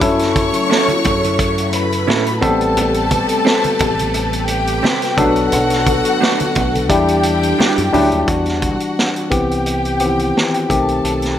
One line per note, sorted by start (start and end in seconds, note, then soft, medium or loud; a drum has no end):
0.00 0.50 F#2 loud
0.00 2.41 C#3 medium
0.00 1.00 F#3 medium
0.00 2.41 F#3 medium
0.00 5.14 A3 medium
0.00 1.00 C#4 medium
0.00 2.39 E4 medium
0.00 1.00 E4 medium
0.00 1.00 A4 medium
0.00 1.70 C#5 loud
0.00 1.71 C#6 loud
0.00 kick loud
0.00 closed hi-hat medium
0.00 low conga medium
0.19 snare soft
0.19 closed hi-hat soft
0.36 kick medium
0.36 closed hi-hat medium
0.36 muted conga soft
0.36 high conga medium
0.54 closed hi-hat medium
0.70 0.88 C#4 medium
0.70 0.88 E4 medium
0.70 0.89 A4 medium
0.70 snare loud
0.70 muted conga soft
0.88 closed hi-hat soft
0.88 high conga medium
1.04 2.05 F#2 medium
1.04 kick medium
1.04 closed hi-hat medium
1.04 muted conga soft
1.04 low conga medium
1.24 closed hi-hat medium
1.24 high conga soft
1.39 kick medium
1.39 closed hi-hat medium
1.58 closed hi-hat medium
1.73 2.41 B4 medium
1.73 2.41 B5 medium
1.73 closed hi-hat medium
1.92 closed hi-hat medium
2.07 2.40 A2 medium
2.07 2.26 C#4 medium
2.07 2.26 E4 medium
2.07 2.26 A4 medium
2.07 snare loud
2.07 high conga medium
2.26 closed hi-hat soft
2.41 3.21 A1 loud
2.41 5.15 C3 medium
2.41 3.53 G3 medium
2.41 3.53 B3 medium
2.41 2.56 C4 medium
2.41 3.53 C4 medium
2.41 5.15 G4 medium
2.41 2.56 G4 medium
2.41 4.45 A4 medium
2.41 3.53 A4 loud
2.41 6.86 B4 medium
2.41 2.57 B4 medium
2.41 4.45 A5 medium
2.41 kick loud
2.41 closed hi-hat medium
2.41 muted conga soft
2.41 high conga medium
2.41 low conga medium
2.61 closed hi-hat soft
2.77 closed hi-hat medium
2.77 low conga medium
2.94 closed hi-hat soft
3.11 kick medium
3.11 closed hi-hat medium
3.11 high conga medium
3.29 closed hi-hat medium
3.45 3.63 C4 medium
3.45 3.63 G4 medium
3.45 3.64 B4 medium
3.45 snare loud
3.64 closed hi-hat soft
3.64 high conga medium
3.79 4.80 A1 loud
3.79 kick loud
3.79 closed hi-hat medium
3.79 muted conga soft
3.79 low conga medium
3.99 closed hi-hat medium
3.99 high conga medium
4.14 closed hi-hat medium
4.14 muted conga soft
4.33 closed hi-hat medium
4.48 5.16 G4 medium
4.48 5.16 G5 medium
4.48 closed hi-hat medium
4.48 muted conga soft
4.67 closed hi-hat medium
4.83 5.01 C4 medium
4.83 5.01 G4 medium
4.83 5.02 B4 medium
4.83 snare loud
4.83 muted conga soft
4.83 high conga medium
5.02 snare soft
5.02 closed hi-hat medium
5.17 5.49 B1 loud
5.17 6.88 D3 medium
5.17 6.28 F#3 medium
5.17 6.88 A3 medium
5.17 5.32 A3 medium
5.17 6.28 B3 medium
5.17 6.29 D4 medium
5.17 5.32 D4 medium
5.17 6.87 F#4 medium
5.17 5.32 F#4 medium
5.17 8.25 A4 medium
5.17 6.29 A4 medium
5.17 6.87 F#5 loud
5.17 kick loud
5.17 closed hi-hat medium
5.17 muted conga soft
5.17 high conga medium
5.17 low conga medium
5.36 closed hi-hat soft
5.52 6.00 B1 loud
5.52 closed hi-hat medium
5.52 muted conga soft
5.52 low conga medium
5.70 snare soft
5.70 closed hi-hat soft
5.87 kick medium
5.87 closed hi-hat medium
5.87 muted conga soft
5.87 high conga medium
6.05 closed hi-hat medium
6.20 6.39 A3 medium
6.20 6.39 D4 medium
6.20 6.39 F#4 medium
6.20 snare loud
6.20 muted conga soft
6.40 closed hi-hat soft
6.40 high conga medium
6.55 6.90 B1 medium
6.55 kick loud
6.55 closed hi-hat medium
6.55 muted conga soft
6.55 low conga medium
6.75 closed hi-hat medium
6.75 high conga medium
6.89 7.52 E2 loud
6.89 8.27 E3 medium
6.89 7.74 G3 medium
6.89 8.27 G3 medium
6.89 7.74 D4 medium
6.89 8.27 D4 medium
6.89 7.74 E4 medium
6.89 7.74 G4 medium
6.89 8.26 G4 medium
6.89 8.26 G5 medium
6.89 kick medium
6.89 closed hi-hat medium
6.89 muted conga soft
7.08 closed hi-hat medium
7.23 closed hi-hat medium
7.23 muted conga soft
7.43 closed hi-hat medium
7.59 7.77 G3 medium
7.59 7.77 D4 medium
7.59 7.78 F#4 medium
7.59 snare loud
7.59 muted conga soft
7.59 high conga medium
7.78 7.92 F#2 medium
7.78 closed hi-hat medium
7.93 8.11 D2 medium
7.93 8.19 F#3 medium
7.93 8.07 G3 medium
7.93 8.19 D4 medium
7.93 8.08 D4 medium
7.93 8.19 E4 medium
7.93 8.08 F#4 medium
7.93 8.19 G4 medium
7.93 open hi-hat soft
7.93 high conga medium
7.93 low conga medium
8.12 8.27 D#2 medium
8.12 closed hi-hat soft
8.26 8.76 E2 medium
8.26 9.26 E3 medium
8.26 9.26 G3 medium
8.26 9.26 D4 medium
8.26 9.26 F#4 medium
8.26 9.30 F#4 medium
8.26 9.30 F#5 medium
8.26 kick medium
8.26 closed hi-hat medium
8.46 snare soft
8.46 closed hi-hat soft
8.62 kick medium
8.62 closed hi-hat medium
8.80 closed hi-hat soft
8.99 snare medium
9.16 closed hi-hat soft
9.30 10.31 C2 medium
9.30 9.87 E3 medium
9.30 9.88 B3 medium
9.30 9.88 C4 medium
9.30 9.88 G4 medium
9.30 10.68 G4 medium
9.30 10.68 G5 medium
9.30 kick medium
9.30 closed hi-hat medium
9.51 closed hi-hat soft
9.66 closed hi-hat medium
9.85 closed hi-hat soft
9.99 10.07 D#3 medium
9.99 10.70 B3 medium
9.99 10.68 C4 medium
9.99 10.69 G4 medium
9.99 closed hi-hat medium
10.06 10.73 E3 medium
10.19 closed hi-hat soft
10.37 snare medium
10.54 closed hi-hat soft
10.69 11.01 B1 medium
10.69 11.39 D#3 medium
10.69 11.39 A3 medium
10.69 11.39 C4 medium
10.69 11.39 G4 medium
10.69 11.39 A4 medium
10.69 11.39 A5 medium
10.69 kick medium
10.69 closed hi-hat medium
10.89 closed hi-hat soft
11.04 11.39 B1 medium
11.04 closed hi-hat medium
11.22 snare soft
11.22 closed hi-hat soft